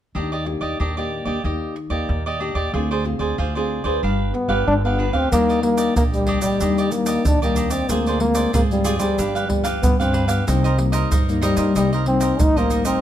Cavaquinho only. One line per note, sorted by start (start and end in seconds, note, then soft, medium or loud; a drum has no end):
0.15 0.30 D4 soft
0.15 0.30 G4 soft
0.15 0.30 D5 soft
0.15 0.30 D#5 soft
0.32 0.45 G4 soft
0.32 0.45 D5 medium
0.32 0.45 D#5 medium
0.46 muted cavaquinho stroke soft
0.61 0.78 G4 soft
0.61 0.77 D5 medium
0.61 0.77 D#5 medium
0.80 0.95 D4 medium
0.80 0.95 G4 soft
0.80 0.95 D5 medium
0.80 0.95 D#5 medium
0.97 1.26 G4 medium
0.97 1.24 D5 medium
0.97 1.25 D#5 soft
1.25 1.42 G4 soft
1.25 1.42 D5 medium
1.25 1.42 D#5 soft
1.45 1.75 G4 soft
1.45 1.75 D5 soft
1.45 1.75 D#5 soft
1.76 muted cavaquinho stroke soft
1.90 2.23 G4 soft
1.90 2.22 D5 medium
1.90 2.23 D#5 medium
2.26 2.39 G4 medium
2.26 2.40 D5 medium
2.26 2.40 D#5 medium
2.40 2.56 D4 soft
2.40 2.55 G4 soft
2.40 2.54 D5 soft
2.40 2.54 D#5 soft
2.55 2.72 G4 medium
2.55 2.71 D5 medium
2.55 2.71 D#5 medium
2.74 2.89 F4 soft
2.74 2.89 G#4 soft
2.74 2.89 C5 medium
2.74 2.89 D5 soft
2.91 3.04 G#4 soft
2.91 3.04 C5 medium
2.91 3.04 D5 medium
3.05 muted cavaquinho stroke soft
3.19 3.36 G#4 medium
3.19 3.36 C5 medium
3.19 3.36 D5 medium
3.38 3.53 F4 soft
3.38 3.53 G#4 medium
3.38 3.54 C5 medium
3.38 3.54 D5 medium
3.55 3.84 G#4 soft
3.55 3.84 C5 medium
3.55 3.83 D5 medium
3.84 4.01 G#4 soft
3.84 4.01 C5 medium
3.84 4.00 D5 medium
4.03 4.33 D4 soft
4.03 4.33 G4 soft
4.03 4.33 B4 soft
4.03 4.33 F5 medium
4.34 muted cavaquinho stroke soft
4.49 4.82 G4 medium
4.49 4.81 B4 medium
4.49 4.81 F5 medium
4.85 4.98 G4 soft
4.85 4.98 B4 soft
4.85 4.99 F5 medium
4.99 5.14 D4 soft
4.99 5.14 G4 soft
4.99 5.13 B4 soft
4.99 5.12 F5 medium
5.13 5.30 G4 soft
5.13 5.30 B4 medium
5.13 5.29 F5 medium
5.32 5.47 D4 soft
5.32 5.47 G4 soft
5.32 5.48 D5 soft
5.32 5.48 D#5 soft
5.49 5.62 G4 soft
5.49 5.62 D5 medium
5.49 5.62 D#5 medium
5.63 muted cavaquinho stroke soft
5.77 5.94 G4 soft
5.77 5.94 D5 medium
5.77 5.94 D#5 medium
5.97 6.26 G4 soft
5.97 6.27 D5 medium
5.97 6.27 D#5 medium
6.27 6.43 D4 medium
6.27 6.42 G4 medium
6.27 6.41 D5 medium
6.27 6.42 D#5 medium
6.42 6.59 G4 medium
6.42 6.58 D5 medium
6.42 6.59 D#5 medium
6.61 6.76 D4 soft
6.61 6.76 G4 soft
6.61 6.76 D5 soft
6.61 6.76 D#5 medium
6.78 6.91 G4 medium
6.78 6.91 D5 medium
6.78 6.91 D#5 medium
6.92 muted cavaquinho stroke soft
7.06 7.39 G4 soft
7.06 7.39 D5 medium
7.06 7.39 D#5 medium
7.42 7.55 G4 medium
7.42 7.56 D5 medium
7.42 7.56 D#5 medium
7.56 7.72 D4 soft
7.56 7.71 G4 soft
7.56 7.69 D5 soft
7.56 7.70 D#5 medium
7.71 7.88 G4 medium
7.71 7.87 D5 medium
7.71 7.87 D#5 soft
7.90 8.05 F4 soft
7.90 8.05 G#4 medium
7.90 8.05 C5 medium
7.90 8.05 D5 medium
8.07 8.20 G#4 medium
8.07 8.20 C5 medium
8.07 8.20 D5 medium
8.20 muted cavaquinho stroke soft
8.35 8.52 G#4 soft
8.35 8.52 C5 medium
8.35 8.51 D5 medium
8.53 8.83 F4 soft
8.53 8.84 G#4 soft
8.53 8.84 C5 medium
8.53 8.85 D5 medium
8.84 9.00 F4 medium
8.84 8.99 G#4 medium
8.84 8.98 C5 medium
8.84 8.98 D5 medium
8.99 9.16 G#4 medium
8.99 9.16 C5 medium
8.99 9.16 D5 medium
9.18 9.33 D4 soft
9.18 9.34 G4 medium
9.18 9.34 B4 medium
9.18 9.34 F5 medium
9.35 9.48 G4 medium
9.35 9.48 B4 medium
9.35 9.49 F5 medium
9.49 muted cavaquinho stroke soft
9.64 9.97 G4 medium
9.64 9.97 B4 medium
9.64 9.96 F5 medium
10.00 10.12 G4 soft
10.00 10.13 B4 medium
10.00 10.13 F5 medium
10.13 10.29 D4 soft
10.13 10.28 G4 soft
10.13 10.27 B4 soft
10.13 10.27 F5 medium
10.28 10.45 G4 medium
10.28 10.45 B4 medium
10.28 10.44 F5 medium
10.47 10.62 D#4 soft
10.47 10.62 A#4 soft
10.47 10.63 C5 medium
10.47 10.63 D#5 medium
10.64 10.77 A#4 medium
10.64 10.77 C5 medium
10.64 10.78 D#5 medium
10.78 muted cavaquinho stroke soft
10.92 11.10 A#4 medium
10.92 11.09 C5 medium
10.92 11.09 D#5 medium
11.11 11.40 D#4 soft
11.11 11.41 A#4 medium
11.11 11.41 C5 medium
11.11 11.42 D#5 medium
11.41 11.58 D#4 medium
11.41 11.57 A#4 medium
11.41 11.56 C5 medium
11.41 11.55 D#5 medium
11.56 11.74 A#4 medium
11.56 11.73 C5 medium
11.56 11.73 D#5 medium
11.75 11.90 D#4 soft
11.75 11.91 A#4 soft
11.75 11.91 C5 medium
11.75 11.91 D#5 medium
11.93 12.05 A#4 soft
11.93 12.06 C5 medium
11.93 12.06 D#5 medium
12.06 muted cavaquinho stroke soft
12.20 12.54 A#4 medium
12.20 12.54 C5 medium
12.20 12.53 D#5 medium
12.57 12.70 A#4 soft
12.57 12.70 C5 medium
12.57 12.71 D#5 medium
12.70 12.86 D#4 soft
12.70 12.85 A#4 soft
12.70 12.84 C5 soft
12.70 12.84 D#5 soft
12.85 13.01 A#4 medium
12.85 13.01 C5 medium
12.85 13.01 D#5 medium